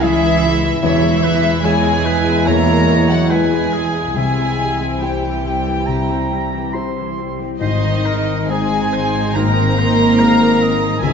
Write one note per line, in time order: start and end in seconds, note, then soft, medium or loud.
0.00 0.79 C#2 medium
0.00 0.79 C#3 medium
0.00 0.86 C#3 medium
0.00 0.23 C#3 medium
0.00 0.82 E3 medium
0.00 0.03 G#3 medium
0.00 0.61 G#3 medium
0.00 0.65 G#3 medium
0.00 0.79 G#3 medium
0.00 0.41 C#4 medium
0.00 0.03 E4 medium
0.00 0.21 E4 medium
0.00 0.65 E4 medium
0.00 0.79 E4 medium
0.00 0.82 E4 loud
0.00 0.80 E4 medium
0.00 0.03 G#4 medium
0.00 1.41 G#4 medium
0.00 0.57 G#4 medium
0.00 0.80 G#4 medium
0.00 0.57 E5 loud
0.00 0.82 E5 loud
0.22 0.44 E3 medium
0.22 1.22 E4 medium
0.42 0.64 G#3 medium
0.42 0.86 C#4 medium
0.63 0.83 E3 medium
0.63 1.02 G#3 medium
0.82 2.43 E1 medium
0.82 4.13 E2 medium
0.82 2.43 E2 medium
0.82 2.46 E3 medium
0.82 1.63 E3 medium
0.82 1.02 E3 medium
0.82 4.12 G#3 loud
0.82 4.13 E4 medium
0.82 1.63 E4 loud
0.82 4.13 E4 medium
0.82 1.24 C#5 medium
0.82 1.60 E5 medium
0.82 1.63 E5 loud
1.03 2.04 G#3 medium
1.03 1.24 G#3 medium
1.23 1.44 E3 medium
1.23 1.62 E4 medium
1.23 1.66 B4 medium
1.42 1.64 G#3 medium
1.42 1.84 G#4 medium
1.63 1.85 E3 medium
1.63 2.43 G#3 medium
1.63 2.47 G#3 medium
1.63 2.25 E4 medium
1.63 2.43 E4 medium
1.63 2.47 G#4 loud
1.63 2.44 G#4 medium
1.63 2.06 C#5 medium
1.63 2.47 G#5 loud
1.85 2.06 G#3 medium
1.85 3.09 G#4 medium
2.05 2.26 E3 medium
2.05 2.67 G#3 medium
2.05 2.48 B4 medium
2.26 2.47 G#3 medium
2.26 2.88 E4 medium
2.45 4.13 E1 medium
2.45 4.13 E2 medium
2.45 2.67 E3 medium
2.45 4.21 E3 medium
2.45 3.10 A#3 medium
2.45 3.10 A#4 medium
2.45 3.31 C#5 medium
2.45 3.10 A#5 medium
2.45 3.10 A#5 loud
2.68 2.89 G#3 medium
2.68 3.72 G#3 medium
2.89 3.10 E3 medium
2.89 3.30 E4 medium
3.09 3.31 F#3 medium
3.09 3.31 G#3 medium
3.09 3.31 F#4 medium
3.09 3.51 G#4 medium
3.09 3.31 F#5 medium
3.09 3.32 F#5 medium
3.30 3.52 E3 medium
3.30 4.13 G#3 soft
3.30 4.16 G#3 medium
3.30 3.93 E4 medium
3.30 4.13 E4 soft
3.30 4.13 G#4 medium
3.30 4.16 G#4 medium
3.30 3.75 B4 medium
3.30 4.15 G#5 medium
3.30 4.16 G#5 medium
3.52 3.74 G#3 medium
3.52 4.20 G#4 medium
3.73 3.96 E3 medium
3.73 4.20 G#3 soft
3.73 4.16 G#4 medium
3.94 4.17 G#3 medium
3.94 4.81 E4 soft
4.16 5.84 C2 medium
4.16 7.36 C2 medium
4.16 5.87 C3 medium
4.16 5.84 C3 soft
4.16 4.37 C3 medium
4.16 5.01 G#3 medium
4.16 7.24 C4 medium
4.16 7.37 E4 medium
4.16 7.25 E4 medium
4.16 5.01 G#4 medium
4.16 4.93 E5 medium
4.16 5.03 G#5 medium
4.16 5.01 G#5 medium
4.38 4.61 E3 medium
4.38 5.44 C4 soft
4.60 7.65 E3 soft
4.60 4.82 G3 medium
4.82 5.03 C4 medium
4.82 5.23 E4 soft
5.02 5.84 G3 soft
5.02 6.74 G3 medium
5.02 5.25 G3 medium
5.02 5.85 E4 soft
5.02 6.74 G4 medium
5.02 5.85 C5 soft
5.02 6.72 C5 soft
5.02 6.74 G5 medium
5.02 5.88 G5 medium
5.02 6.75 G5 medium
5.24 5.46 E3 medium
5.24 6.51 E4 soft
5.45 5.67 C3 medium
5.45 6.08 C4 soft
5.67 5.89 E3 medium
5.67 6.30 G3 soft
5.86 7.57 C2 soft
5.86 7.57 C3 soft
5.86 7.65 C3 soft
5.86 6.08 G3 medium
5.86 6.75 A#5 medium
6.09 7.17 C4 soft
6.09 6.32 C4 medium
6.31 7.38 G3 soft
6.31 6.53 G3 medium
6.52 6.75 E3 soft
6.52 6.95 E4 soft
6.73 6.97 C3 medium
6.73 7.57 G3 soft
6.73 7.57 E4 soft
6.73 8.50 C5 soft
6.73 7.57 C5 soft
6.73 7.44 C6 medium
6.96 7.18 E3 medium
6.96 7.65 E4 soft
7.18 7.40 G3 medium
7.18 11.06 C4 soft
7.39 7.64 G3 soft
7.39 7.60 C4 medium
7.60 9.32 G#1 medium
7.60 10.99 G#1 medium
7.60 9.35 G#2 medium
7.60 9.32 G#2 medium
7.60 8.46 D#3 medium
7.60 10.98 C4 medium
7.60 10.99 C4 medium
7.60 8.46 D#4 medium
7.60 10.98 D#4 medium
7.60 10.99 D#4 medium
7.60 8.07 C5 medium
7.60 8.45 D#5 medium
7.60 8.51 D#5 medium
7.83 8.93 D#3 medium
8.05 9.14 G#3 medium
8.05 8.52 A#4 medium
8.28 8.71 D#4 medium
8.50 9.32 G#3 medium
8.50 9.36 G#3 medium
8.50 9.32 D#4 soft
8.50 9.36 G#4 medium
8.50 8.94 G#4 medium
8.50 9.32 C5 medium
8.50 10.19 C5 medium
8.50 9.34 G#5 loud
8.50 9.37 G#5 medium
8.72 9.98 D#4 medium
8.93 9.56 D#3 medium
8.93 9.37 C5 medium
9.15 9.77 G#3 medium
9.34 10.98 G#1 medium
9.34 10.98 G#2 medium
9.34 11.06 G#2 medium
9.34 11.02 A#3 medium
9.34 11.02 A#4 loud
9.34 9.79 A#4 medium
9.34 11.01 A#5 loud
9.34 11.01 A#5 medium
9.57 10.60 D#3 medium
9.78 10.81 G#3 medium
9.78 10.21 C5 medium
9.99 10.40 D#4 medium
10.20 10.98 G#3 soft
10.20 10.99 D#4 medium
10.20 10.99 C5 medium
10.20 11.06 C5 medium
10.20 10.63 F5 medium
10.41 11.06 D#4 medium
10.61 11.06 D#3 medium
10.61 11.01 D#5 medium
10.82 11.13 G#3 medium
11.01 11.13 C#2 medium
11.01 11.13 C#3 medium
11.01 11.13 G#3 medium
11.01 11.13 E4 medium
11.01 11.13 G#4 medium
11.01 11.13 E5 medium
11.01 11.13 G#5 loud
11.01 11.13 G#5 medium